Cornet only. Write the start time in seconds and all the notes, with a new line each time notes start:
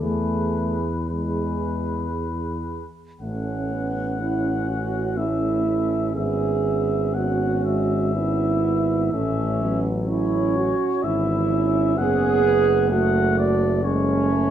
0.01 B4
1.10 B4
3.21 F#5
5.17 E5
6.16 E5
7.14 F#5
7.65 E5
9.12 E5
10.08 C#5
11.03 E5
11.98 F#5
12.91 F#5
13.38 D5
13.84 C#5